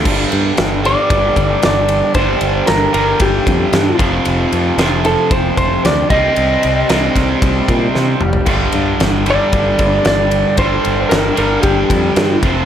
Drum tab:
CC |x---------------|----------------|----------------|----------------|
RD |--x-x-x-x-x-x-x-|x-x-x-x-x-x-x-x-|x-x-x-x-x-x-x-x-|x-x-x-x-x-x-----|
SD |----o-------o---|----o-------o---|----o-------o---|----o-o-----o---|
T2 |----------------|----------------|----------------|--------------o-|
FT |----------------|----------------|----------------|---------------o|
BD |o-------o-o-----|o-------o-o---o-|--------o-o---o-|------o-o-o-----|

CC |x---------------|----------------|
RD |--x-x-x-x-x-x-x-|x-x-x-x-x-x-x-x-|
SD |----o-------o---|----o-------o---|
T2 |----------------|----------------|
FT |----------------|----------------|
BD |o-------o-o-----|o-------o-o---o-|